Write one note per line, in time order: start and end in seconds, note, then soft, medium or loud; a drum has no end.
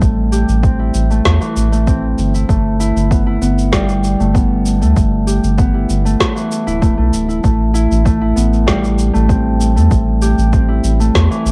0.00 0.45 A1 loud
0.00 2.54 G3 loud
0.00 1.10 A3 medium
0.00 0.62 C4 medium
0.00 0.79 E4 medium
0.00 kick loud
0.00 shaker soft
0.32 2.68 G4 medium
0.32 shaker medium
0.49 0.91 A1 medium
0.49 shaker soft
0.63 1.87 C4 medium
0.63 kick loud
0.63 shaker soft
0.80 2.34 E4 medium
0.94 1.21 A1 medium
0.94 shaker medium
1.10 1.72 A3 medium
1.10 shaker soft
1.25 1.39 E2 loud
1.25 kick loud
1.25 snare medium
1.25 shaker soft
1.41 2.54 E3 medium
1.41 shaker soft
1.56 2.14 A1 medium
1.56 shaker medium
1.72 2.48 A3 medium
1.72 shaker soft
1.87 3.17 C4 medium
1.87 kick loud
1.87 shaker soft
2.18 2.44 G1 medium
2.18 shaker medium
2.34 2.79 E4 medium
2.34 shaker soft
2.49 2.92 G1 loud
2.49 4.19 A3 medium
2.49 kick loud
2.49 shaker soft
2.80 3.26 E4 loud
2.80 shaker medium
2.96 3.38 G1 medium
2.96 shaker soft
3.11 3.41 B3 medium
3.11 kick loud
3.11 shaker soft
3.26 5.74 E4 medium
3.41 4.16 G1 medium
3.41 4.33 B3 medium
3.41 shaker medium
3.58 shaker soft
3.72 7.49 G3 medium
3.72 kick loud
3.72 snare medium
3.72 shaker soft
3.89 shaker soft
4.04 shaker medium
4.20 4.83 G1 medium
4.20 4.81 A3 medium
4.20 shaker soft
4.34 5.57 B3 medium
4.34 kick loud
4.34 shaker soft
4.66 shaker medium
4.81 4.94 D2 medium
4.81 6.05 A3 medium
4.81 shaker soft
4.97 5.40 G1 medium
4.97 kick loud
4.97 shaker soft
5.27 7.62 G4 medium
5.27 shaker medium
5.44 5.86 G1 medium
5.44 shaker soft
5.57 8.35 B3 medium
5.57 kick loud
5.57 shaker soft
5.74 6.66 E4 medium
5.90 6.16 G1 medium
5.90 shaker medium
6.05 6.81 A3 medium
6.05 shaker soft
6.20 kick loud
6.20 snare medium
6.20 shaker soft
6.36 7.49 E3 medium
6.36 shaker soft
6.52 shaker medium
6.67 6.93 D1 medium
6.67 7.28 E4 loud
6.67 shaker soft
6.81 6.97 A3 medium
6.81 kick loud
6.81 shaker soft
6.98 7.11 B1 loud
6.98 7.43 A3 medium
7.13 7.39 D1 medium
7.13 shaker medium
7.29 7.74 E4 medium
7.29 shaker soft
7.44 7.87 A1 medium
7.44 8.05 A3 medium
7.44 kick loud
7.44 shaker soft
7.74 8.21 E4 loud
7.74 shaker medium
7.92 8.33 A1 medium
7.92 shaker soft
8.05 9.13 A3 medium
8.05 kick loud
8.05 shaker soft
8.22 10.68 E4 medium
8.36 9.11 A1 medium
8.36 9.35 B3 medium
8.36 shaker medium
8.53 shaker soft
8.67 11.52 G3 loud
8.67 kick loud
8.67 snare medium
8.67 shaker soft
8.84 shaker soft
8.99 shaker medium
9.13 9.78 A1 medium
9.13 9.76 A3 medium
9.13 shaker soft
9.29 10.52 C4 medium
9.29 kick loud
9.29 shaker soft
9.61 shaker medium
9.76 9.89 E2 medium
9.76 10.99 A3 medium
9.76 shaker soft
9.91 10.34 A1 loud
9.91 kick loud
9.91 shaker soft
10.22 11.52 G4 medium
10.22 shaker medium
10.38 10.80 A1 medium
10.38 shaker soft
10.52 11.52 C4 medium
10.52 kick loud
10.52 shaker soft
10.68 11.52 E4 medium
10.84 11.10 A1 medium
10.84 shaker medium
11.00 11.52 A3 medium
11.00 shaker soft
11.15 11.29 E2 loud
11.15 kick loud
11.15 snare medium
11.15 shaker soft
11.30 11.52 E3 medium
11.30 shaker soft
11.46 11.52 A1 medium
11.46 shaker medium